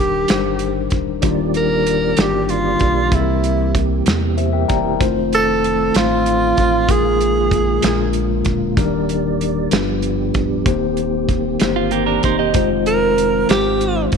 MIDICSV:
0, 0, Header, 1, 7, 480
1, 0, Start_track
1, 0, Key_signature, -3, "major"
1, 0, Tempo, 628272
1, 941, Time_signature, 6, 3, 24, 8
1, 10826, End_track
2, 0, Start_track
2, 0, Title_t, "Clean electric guitar"
2, 0, Program_c, 0, 27
2, 8985, Note_on_c, 0, 65, 57
2, 9099, Note_off_c, 0, 65, 0
2, 9102, Note_on_c, 0, 58, 51
2, 9106, Note_on_c, 0, 67, 55
2, 9213, Note_off_c, 0, 67, 0
2, 9216, Note_on_c, 0, 70, 57
2, 9218, Note_off_c, 0, 58, 0
2, 9220, Note_on_c, 0, 62, 48
2, 9334, Note_off_c, 0, 70, 0
2, 9336, Note_off_c, 0, 62, 0
2, 9356, Note_on_c, 0, 63, 55
2, 9358, Note_on_c, 0, 72, 54
2, 9463, Note_off_c, 0, 72, 0
2, 9465, Note_off_c, 0, 63, 0
2, 9466, Note_on_c, 0, 75, 56
2, 9469, Note_on_c, 0, 67, 48
2, 9693, Note_off_c, 0, 75, 0
2, 9695, Note_off_c, 0, 67, 0
2, 10826, End_track
3, 0, Start_track
3, 0, Title_t, "Tenor saxophone"
3, 0, Program_c, 1, 66
3, 0, Note_on_c, 1, 67, 66
3, 713, Note_off_c, 1, 67, 0
3, 1196, Note_on_c, 1, 70, 77
3, 1687, Note_on_c, 1, 67, 72
3, 1698, Note_off_c, 1, 70, 0
3, 1870, Note_off_c, 1, 67, 0
3, 1870, Note_on_c, 1, 67, 49
3, 1912, Note_on_c, 1, 65, 74
3, 1923, Note_off_c, 1, 67, 0
3, 2404, Note_on_c, 1, 64, 61
3, 2416, Note_off_c, 1, 65, 0
3, 2933, Note_off_c, 1, 64, 0
3, 4085, Note_on_c, 1, 69, 85
3, 4559, Note_on_c, 1, 65, 77
3, 4570, Note_off_c, 1, 69, 0
3, 5279, Note_on_c, 1, 68, 72
3, 5290, Note_off_c, 1, 65, 0
3, 6231, Note_off_c, 1, 68, 0
3, 9831, Note_on_c, 1, 70, 86
3, 10278, Note_off_c, 1, 70, 0
3, 10314, Note_on_c, 1, 67, 76
3, 10759, Note_off_c, 1, 67, 0
3, 10826, End_track
4, 0, Start_track
4, 0, Title_t, "Tine electric piano"
4, 0, Program_c, 2, 4
4, 0, Control_c, 2, 64, 127
4, 0, Note_on_c, 2, 51, 51
4, 0, Note_on_c, 2, 55, 62
4, 0, Note_on_c, 2, 62, 57
4, 0, Note_on_c, 2, 63, 56
4, 0, Note_on_c, 2, 70, 71
4, 153, Note_off_c, 2, 62, 0
4, 154, Note_off_c, 2, 63, 0
4, 157, Note_off_c, 2, 70, 0
4, 174, Note_off_c, 2, 55, 0
4, 191, Note_off_c, 2, 51, 0
4, 215, Note_on_c, 2, 55, 59
4, 219, Note_on_c, 2, 63, 50
4, 220, Note_on_c, 2, 62, 56
4, 227, Note_on_c, 2, 72, 64
4, 870, Note_off_c, 2, 55, 0
4, 872, Note_off_c, 2, 62, 0
4, 872, Note_off_c, 2, 63, 0
4, 876, Note_off_c, 2, 72, 0
4, 941, Note_on_c, 2, 55, 71
4, 943, Note_on_c, 2, 62, 68
4, 945, Note_on_c, 2, 51, 57
4, 948, Note_on_c, 2, 65, 82
4, 950, Note_on_c, 2, 63, 68
4, 1593, Note_off_c, 2, 55, 0
4, 1594, Note_off_c, 2, 62, 0
4, 1596, Note_off_c, 2, 65, 0
4, 1597, Note_off_c, 2, 63, 0
4, 1632, Note_off_c, 2, 51, 0
4, 1654, Note_on_c, 2, 55, 48
4, 1659, Note_on_c, 2, 62, 45
4, 1666, Note_on_c, 2, 63, 45
4, 1669, Note_on_c, 2, 66, 41
4, 1715, Note_off_c, 2, 66, 0
4, 1715, Note_on_c, 2, 67, 54
4, 2309, Note_off_c, 2, 55, 0
4, 2312, Note_off_c, 2, 62, 0
4, 2315, Note_off_c, 2, 63, 0
4, 2340, Note_off_c, 2, 67, 0
4, 2386, Note_on_c, 2, 55, 64
4, 2388, Note_on_c, 2, 48, 50
4, 2389, Note_on_c, 2, 60, 56
4, 2392, Note_on_c, 2, 64, 58
4, 2392, Note_on_c, 2, 68, 56
4, 2393, Control_c, 2, 64, 0
4, 2436, Note_off_c, 2, 68, 0
4, 2445, Note_on_c, 2, 70, 67
4, 2506, Control_c, 2, 64, 127
4, 3035, Note_off_c, 2, 55, 0
4, 3037, Note_off_c, 2, 60, 0
4, 3039, Note_off_c, 2, 64, 0
4, 3065, Note_off_c, 2, 70, 0
4, 3074, Note_off_c, 2, 48, 0
4, 3339, Note_on_c, 2, 72, 46
4, 3341, Note_on_c, 2, 76, 55
4, 3345, Note_on_c, 2, 67, 41
4, 3450, Note_off_c, 2, 76, 0
4, 3454, Note_off_c, 2, 72, 0
4, 3457, Note_off_c, 2, 67, 0
4, 3459, Note_on_c, 2, 76, 54
4, 3463, Note_on_c, 2, 79, 49
4, 3465, Note_on_c, 2, 70, 45
4, 3567, Note_off_c, 2, 79, 0
4, 3574, Note_off_c, 2, 76, 0
4, 3576, Note_on_c, 2, 79, 56
4, 3577, Note_off_c, 2, 70, 0
4, 3577, Note_on_c, 2, 74, 47
4, 3578, Note_on_c, 2, 82, 56
4, 3693, Note_off_c, 2, 74, 0
4, 3693, Note_off_c, 2, 79, 0
4, 3696, Note_on_c, 2, 64, 41
4, 3696, Note_on_c, 2, 70, 50
4, 3803, Note_off_c, 2, 82, 0
4, 3812, Note_on_c, 2, 57, 79
4, 3818, Note_on_c, 2, 65, 71
4, 3819, Note_on_c, 2, 63, 74
4, 3823, Note_on_c, 2, 72, 85
4, 3831, Control_c, 2, 64, 0
4, 3926, Note_off_c, 2, 64, 0
4, 3927, Note_off_c, 2, 70, 0
4, 3968, Control_c, 2, 64, 127
4, 4469, Note_off_c, 2, 57, 0
4, 4472, Note_off_c, 2, 63, 0
4, 4472, Note_off_c, 2, 65, 0
4, 4474, Note_off_c, 2, 72, 0
4, 4538, Note_on_c, 2, 63, 45
4, 4540, Note_on_c, 2, 57, 51
4, 4544, Note_on_c, 2, 65, 48
4, 4553, Note_on_c, 2, 72, 57
4, 5192, Note_off_c, 2, 63, 0
4, 5193, Note_off_c, 2, 57, 0
4, 5194, Note_off_c, 2, 65, 0
4, 5199, Note_off_c, 2, 72, 0
4, 5259, Note_on_c, 2, 46, 47
4, 5260, Note_on_c, 2, 56, 63
4, 5261, Note_on_c, 2, 63, 58
4, 5266, Note_on_c, 2, 65, 60
4, 5268, Note_on_c, 2, 70, 74
4, 5270, Control_c, 2, 64, 0
4, 5418, Control_c, 2, 64, 127
4, 5913, Note_off_c, 2, 56, 0
4, 5913, Note_off_c, 2, 63, 0
4, 5916, Note_off_c, 2, 65, 0
4, 5917, Note_off_c, 2, 70, 0
4, 5950, Note_off_c, 2, 46, 0
4, 5968, Note_on_c, 2, 56, 59
4, 5974, Note_on_c, 2, 61, 44
4, 5975, Note_on_c, 2, 46, 54
4, 5976, Note_on_c, 2, 65, 54
4, 5980, Note_on_c, 2, 70, 62
4, 5993, Control_c, 2, 64, 0
4, 6022, Note_on_c, 2, 62, 53
4, 6028, Note_off_c, 2, 61, 0
4, 6111, Control_c, 2, 64, 127
4, 6627, Note_off_c, 2, 56, 0
4, 6631, Note_off_c, 2, 65, 0
4, 6633, Note_off_c, 2, 70, 0
4, 6654, Note_off_c, 2, 62, 0
4, 6668, Note_off_c, 2, 46, 0
4, 6693, Note_on_c, 2, 55, 74
4, 6698, Note_on_c, 2, 51, 62
4, 6699, Note_on_c, 2, 63, 65
4, 6701, Note_on_c, 2, 62, 63
4, 6706, Note_on_c, 2, 70, 81
4, 6713, Control_c, 2, 64, 0
4, 6827, Control_c, 2, 64, 127
4, 7350, Note_off_c, 2, 55, 0
4, 7353, Note_off_c, 2, 63, 0
4, 7354, Note_off_c, 2, 62, 0
4, 7356, Note_off_c, 2, 70, 0
4, 7390, Note_off_c, 2, 51, 0
4, 7419, Note_on_c, 2, 55, 59
4, 7419, Note_on_c, 2, 62, 52
4, 7422, Note_on_c, 2, 43, 55
4, 7422, Note_on_c, 2, 65, 54
4, 7429, Note_on_c, 2, 71, 63
4, 7434, Control_c, 2, 64, 0
4, 7551, Control_c, 2, 64, 127
4, 8073, Note_off_c, 2, 55, 0
4, 8073, Note_off_c, 2, 62, 0
4, 8074, Note_off_c, 2, 65, 0
4, 8078, Note_off_c, 2, 71, 0
4, 8112, Note_off_c, 2, 43, 0
4, 8141, Note_on_c, 2, 58, 74
4, 8147, Note_on_c, 2, 51, 60
4, 8147, Note_on_c, 2, 63, 66
4, 8148, Note_on_c, 2, 67, 68
4, 8148, Note_on_c, 2, 72, 83
4, 8154, Control_c, 2, 64, 0
4, 8270, Control_c, 2, 64, 127
4, 8795, Note_off_c, 2, 58, 0
4, 8797, Note_off_c, 2, 63, 0
4, 8798, Note_off_c, 2, 67, 0
4, 8798, Note_off_c, 2, 72, 0
4, 8835, Note_off_c, 2, 51, 0
4, 8859, Note_on_c, 2, 58, 61
4, 8867, Note_on_c, 2, 63, 54
4, 8868, Note_on_c, 2, 67, 56
4, 8872, Note_on_c, 2, 72, 69
4, 9514, Note_off_c, 2, 58, 0
4, 9518, Note_off_c, 2, 63, 0
4, 9518, Note_off_c, 2, 67, 0
4, 9520, Note_off_c, 2, 72, 0
4, 9582, Note_on_c, 2, 63, 68
4, 9584, Note_on_c, 2, 56, 80
4, 9591, Note_on_c, 2, 72, 86
4, 9592, Note_on_c, 2, 65, 74
4, 9595, Control_c, 2, 64, 0
4, 9734, Control_c, 2, 64, 127
4, 10236, Note_off_c, 2, 56, 0
4, 10236, Note_off_c, 2, 63, 0
4, 10240, Note_off_c, 2, 65, 0
4, 10240, Note_off_c, 2, 72, 0
4, 10300, Note_on_c, 2, 56, 48
4, 10307, Note_on_c, 2, 63, 46
4, 10311, Note_on_c, 2, 65, 49
4, 10312, Note_on_c, 2, 72, 57
4, 10826, Note_off_c, 2, 56, 0
4, 10826, Note_off_c, 2, 63, 0
4, 10826, Note_off_c, 2, 65, 0
4, 10826, Note_off_c, 2, 72, 0
4, 10826, End_track
5, 0, Start_track
5, 0, Title_t, "Tonewheel organ"
5, 0, Program_c, 3, 16
5, 929, Note_on_c, 3, 74, 46
5, 930, Note_on_c, 3, 67, 52
5, 932, Note_on_c, 3, 58, 47
5, 934, Note_on_c, 3, 51, 49
5, 2360, Note_off_c, 3, 74, 0
5, 2363, Note_off_c, 3, 51, 0
5, 2377, Note_on_c, 3, 52, 49
5, 2379, Note_on_c, 3, 60, 47
5, 3787, Note_off_c, 3, 67, 0
5, 3788, Note_off_c, 3, 58, 0
5, 3805, Note_off_c, 3, 52, 0
5, 3806, Note_off_c, 3, 60, 0
5, 3837, Note_on_c, 3, 60, 47
5, 3839, Note_on_c, 3, 51, 53
5, 3841, Note_on_c, 3, 65, 60
5, 3845, Note_on_c, 3, 57, 47
5, 5255, Note_off_c, 3, 60, 0
5, 5256, Note_off_c, 3, 51, 0
5, 5259, Note_off_c, 3, 57, 0
5, 5274, Note_on_c, 3, 56, 44
5, 5275, Note_on_c, 3, 51, 48
5, 5276, Note_on_c, 3, 58, 46
5, 5981, Note_off_c, 3, 51, 0
5, 5993, Note_on_c, 3, 50, 48
5, 6684, Note_off_c, 3, 65, 0
5, 6694, Note_off_c, 3, 56, 0
5, 6701, Note_off_c, 3, 50, 0
5, 6707, Note_on_c, 3, 51, 49
5, 6709, Note_on_c, 3, 74, 45
5, 6710, Note_on_c, 3, 67, 55
5, 7409, Note_off_c, 3, 58, 0
5, 7418, Note_off_c, 3, 51, 0
5, 7419, Note_off_c, 3, 67, 0
5, 7419, Note_off_c, 3, 74, 0
5, 7436, Note_on_c, 3, 53, 46
5, 7436, Note_on_c, 3, 62, 44
5, 7438, Note_on_c, 3, 59, 44
5, 7441, Note_on_c, 3, 67, 55
5, 8139, Note_on_c, 3, 58, 46
5, 8141, Note_on_c, 3, 51, 53
5, 8142, Note_on_c, 3, 60, 47
5, 8143, Note_off_c, 3, 53, 0
5, 8143, Note_off_c, 3, 62, 0
5, 8144, Note_off_c, 3, 59, 0
5, 9568, Note_off_c, 3, 58, 0
5, 9572, Note_off_c, 3, 67, 0
5, 9598, Note_on_c, 3, 65, 55
5, 9600, Note_on_c, 3, 56, 47
5, 10826, Note_off_c, 3, 51, 0
5, 10826, Note_off_c, 3, 56, 0
5, 10826, Note_off_c, 3, 60, 0
5, 10826, Note_off_c, 3, 65, 0
5, 10826, End_track
6, 0, Start_track
6, 0, Title_t, "Sub bass"
6, 0, Program_c, 4, 38
6, 0, Note_on_c, 4, 27, 85
6, 190, Note_off_c, 4, 27, 0
6, 227, Note_on_c, 4, 31, 78
6, 674, Note_off_c, 4, 31, 0
6, 701, Note_on_c, 4, 26, 81
6, 922, Note_off_c, 4, 26, 0
6, 940, Note_on_c, 4, 27, 88
6, 1630, Note_off_c, 4, 27, 0
6, 1659, Note_on_c, 4, 31, 85
6, 2109, Note_off_c, 4, 31, 0
6, 2147, Note_on_c, 4, 35, 76
6, 2365, Note_off_c, 4, 35, 0
6, 2381, Note_on_c, 4, 36, 87
6, 3071, Note_off_c, 4, 36, 0
6, 3105, Note_on_c, 4, 40, 81
6, 3553, Note_off_c, 4, 40, 0
6, 3590, Note_on_c, 4, 28, 82
6, 3807, Note_off_c, 4, 28, 0
6, 3825, Note_on_c, 4, 29, 93
6, 4513, Note_off_c, 4, 29, 0
6, 4543, Note_on_c, 4, 33, 82
6, 4991, Note_off_c, 4, 33, 0
6, 5027, Note_on_c, 4, 33, 88
6, 5245, Note_off_c, 4, 33, 0
6, 5263, Note_on_c, 4, 34, 92
6, 5952, Note_off_c, 4, 34, 0
6, 5985, Note_on_c, 4, 34, 90
6, 6433, Note_off_c, 4, 34, 0
6, 6463, Note_on_c, 4, 26, 85
6, 6684, Note_off_c, 4, 26, 0
6, 6699, Note_on_c, 4, 27, 96
6, 7390, Note_off_c, 4, 27, 0
6, 7423, Note_on_c, 4, 31, 81
6, 7873, Note_off_c, 4, 31, 0
6, 7907, Note_on_c, 4, 26, 76
6, 8126, Note_off_c, 4, 26, 0
6, 8146, Note_on_c, 4, 27, 95
6, 8835, Note_off_c, 4, 27, 0
6, 8869, Note_on_c, 4, 31, 78
6, 9316, Note_off_c, 4, 31, 0
6, 9351, Note_on_c, 4, 28, 76
6, 9569, Note_off_c, 4, 28, 0
6, 9586, Note_on_c, 4, 29, 93
6, 10275, Note_off_c, 4, 29, 0
6, 10307, Note_on_c, 4, 32, 85
6, 10756, Note_off_c, 4, 32, 0
6, 10796, Note_on_c, 4, 33, 81
6, 10826, Note_off_c, 4, 33, 0
6, 10826, End_track
7, 0, Start_track
7, 0, Title_t, "Drums"
7, 215, Note_on_c, 9, 42, 70
7, 230, Note_on_c, 9, 38, 80
7, 292, Note_off_c, 9, 42, 0
7, 307, Note_off_c, 9, 38, 0
7, 451, Note_on_c, 9, 42, 41
7, 527, Note_off_c, 9, 42, 0
7, 691, Note_on_c, 9, 42, 37
7, 702, Note_on_c, 9, 36, 72
7, 767, Note_off_c, 9, 42, 0
7, 779, Note_off_c, 9, 36, 0
7, 933, Note_on_c, 9, 42, 67
7, 939, Note_on_c, 9, 36, 86
7, 1010, Note_off_c, 9, 42, 0
7, 1016, Note_off_c, 9, 36, 0
7, 1178, Note_on_c, 9, 42, 39
7, 1254, Note_off_c, 9, 42, 0
7, 1425, Note_on_c, 9, 42, 44
7, 1501, Note_off_c, 9, 42, 0
7, 1655, Note_on_c, 9, 42, 69
7, 1670, Note_on_c, 9, 38, 80
7, 1732, Note_off_c, 9, 42, 0
7, 1747, Note_off_c, 9, 38, 0
7, 1901, Note_on_c, 9, 42, 42
7, 1977, Note_off_c, 9, 42, 0
7, 2135, Note_on_c, 9, 42, 35
7, 2145, Note_on_c, 9, 36, 69
7, 2211, Note_off_c, 9, 42, 0
7, 2221, Note_off_c, 9, 36, 0
7, 2382, Note_on_c, 9, 36, 83
7, 2382, Note_on_c, 9, 42, 63
7, 2458, Note_off_c, 9, 36, 0
7, 2459, Note_off_c, 9, 42, 0
7, 2625, Note_on_c, 9, 42, 41
7, 2702, Note_off_c, 9, 42, 0
7, 2863, Note_on_c, 9, 36, 74
7, 2865, Note_on_c, 9, 42, 43
7, 2939, Note_off_c, 9, 36, 0
7, 2941, Note_off_c, 9, 42, 0
7, 3101, Note_on_c, 9, 42, 72
7, 3116, Note_on_c, 9, 38, 81
7, 3177, Note_off_c, 9, 42, 0
7, 3192, Note_off_c, 9, 38, 0
7, 3344, Note_on_c, 9, 42, 39
7, 3420, Note_off_c, 9, 42, 0
7, 3584, Note_on_c, 9, 42, 35
7, 3588, Note_on_c, 9, 36, 70
7, 3660, Note_off_c, 9, 42, 0
7, 3665, Note_off_c, 9, 36, 0
7, 3824, Note_on_c, 9, 36, 88
7, 3826, Note_on_c, 9, 42, 63
7, 3901, Note_off_c, 9, 36, 0
7, 3902, Note_off_c, 9, 42, 0
7, 4069, Note_on_c, 9, 42, 41
7, 4145, Note_off_c, 9, 42, 0
7, 4311, Note_on_c, 9, 42, 43
7, 4387, Note_off_c, 9, 42, 0
7, 4541, Note_on_c, 9, 42, 67
7, 4556, Note_on_c, 9, 38, 80
7, 4618, Note_off_c, 9, 42, 0
7, 4633, Note_off_c, 9, 38, 0
7, 4783, Note_on_c, 9, 42, 44
7, 4860, Note_off_c, 9, 42, 0
7, 5022, Note_on_c, 9, 42, 40
7, 5026, Note_on_c, 9, 36, 70
7, 5099, Note_off_c, 9, 42, 0
7, 5102, Note_off_c, 9, 36, 0
7, 5260, Note_on_c, 9, 42, 70
7, 5261, Note_on_c, 9, 36, 87
7, 5336, Note_off_c, 9, 42, 0
7, 5337, Note_off_c, 9, 36, 0
7, 5505, Note_on_c, 9, 42, 38
7, 5581, Note_off_c, 9, 42, 0
7, 5741, Note_on_c, 9, 36, 74
7, 5748, Note_on_c, 9, 42, 45
7, 5817, Note_off_c, 9, 36, 0
7, 5824, Note_off_c, 9, 42, 0
7, 5978, Note_on_c, 9, 42, 69
7, 5993, Note_on_c, 9, 38, 81
7, 6054, Note_off_c, 9, 42, 0
7, 6069, Note_off_c, 9, 38, 0
7, 6212, Note_on_c, 9, 42, 40
7, 6289, Note_off_c, 9, 42, 0
7, 6452, Note_on_c, 9, 42, 37
7, 6463, Note_on_c, 9, 36, 68
7, 6529, Note_off_c, 9, 42, 0
7, 6539, Note_off_c, 9, 36, 0
7, 6701, Note_on_c, 9, 36, 91
7, 6703, Note_on_c, 9, 42, 65
7, 6777, Note_off_c, 9, 36, 0
7, 6779, Note_off_c, 9, 42, 0
7, 6946, Note_on_c, 9, 42, 40
7, 7022, Note_off_c, 9, 42, 0
7, 7189, Note_on_c, 9, 42, 44
7, 7266, Note_off_c, 9, 42, 0
7, 7421, Note_on_c, 9, 42, 69
7, 7436, Note_on_c, 9, 38, 82
7, 7497, Note_off_c, 9, 42, 0
7, 7512, Note_off_c, 9, 38, 0
7, 7658, Note_on_c, 9, 42, 40
7, 7735, Note_off_c, 9, 42, 0
7, 7901, Note_on_c, 9, 42, 36
7, 7906, Note_on_c, 9, 36, 72
7, 7978, Note_off_c, 9, 42, 0
7, 7983, Note_off_c, 9, 36, 0
7, 8143, Note_on_c, 9, 36, 88
7, 8143, Note_on_c, 9, 42, 67
7, 8219, Note_off_c, 9, 36, 0
7, 8219, Note_off_c, 9, 42, 0
7, 8380, Note_on_c, 9, 42, 39
7, 8457, Note_off_c, 9, 42, 0
7, 8623, Note_on_c, 9, 36, 71
7, 8624, Note_on_c, 9, 42, 42
7, 8699, Note_off_c, 9, 36, 0
7, 8701, Note_off_c, 9, 42, 0
7, 8859, Note_on_c, 9, 42, 69
7, 8874, Note_on_c, 9, 38, 76
7, 8936, Note_off_c, 9, 42, 0
7, 8951, Note_off_c, 9, 38, 0
7, 9099, Note_on_c, 9, 42, 43
7, 9175, Note_off_c, 9, 42, 0
7, 9343, Note_on_c, 9, 42, 39
7, 9350, Note_on_c, 9, 36, 71
7, 9419, Note_off_c, 9, 42, 0
7, 9426, Note_off_c, 9, 36, 0
7, 9579, Note_on_c, 9, 42, 65
7, 9585, Note_on_c, 9, 36, 88
7, 9656, Note_off_c, 9, 42, 0
7, 9661, Note_off_c, 9, 36, 0
7, 9826, Note_on_c, 9, 42, 39
7, 9903, Note_off_c, 9, 42, 0
7, 10069, Note_on_c, 9, 42, 45
7, 10146, Note_off_c, 9, 42, 0
7, 10306, Note_on_c, 9, 42, 68
7, 10321, Note_on_c, 9, 38, 87
7, 10383, Note_off_c, 9, 42, 0
7, 10398, Note_off_c, 9, 38, 0
7, 10549, Note_on_c, 9, 42, 43
7, 10626, Note_off_c, 9, 42, 0
7, 10787, Note_on_c, 9, 42, 40
7, 10793, Note_on_c, 9, 36, 67
7, 10826, Note_off_c, 9, 36, 0
7, 10826, Note_off_c, 9, 42, 0
7, 10826, End_track
0, 0, End_of_file